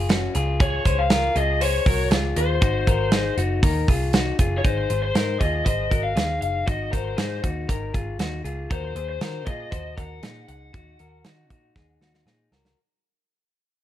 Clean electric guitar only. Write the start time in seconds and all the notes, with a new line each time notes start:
0.09 C#4 F#4
0.35 F4 G#4
0.60 F4 G#4
0.85 G#4 C5
1.10 F4 A#4
1.35 F4 G#4
1.61 G#4 C5
1.86 F#4 A#4
2.11 F4 G#4
2.61 D#4 F#4
2.87 F#4 A#4
3.12 D#4 G#4
3.37 D#4 F#4
3.63 D#4 A#4
3.89 F4 G#4
4.14 D#4 F#4
4.39 F4 G#4
4.64 D#4 G#4
4.90 G#4 C5
5.15 D#4 A#4
5.40 F4 G#4
5.65 G#4 C5
5.90 F#4 A#4
6.15 D#4 G#4
6.66 D#4 F#4
6.91 F#4 A#4
7.17 D#4 G#4
7.43 D#4 F#4
7.69 D#4 A#4
7.94 F4 G#4
8.19 D#4 F#4
8.44 F4 G#4
8.70 F#4 A#4
8.96 G#4 C5
9.21 F#4 A#4
9.46 F4 G#4
9.71 F#4 C5
9.97 F#4 A#4
10.23 D#4 G#4
10.73 D#4 F#4
11.00 F#4 A#4
11.25 D#4 F#4
11.51 D#4 F#4
11.76 D#4 G#4
12.01 D#4 F#4
12.27 D#4 G#4
12.52 F#4 A#4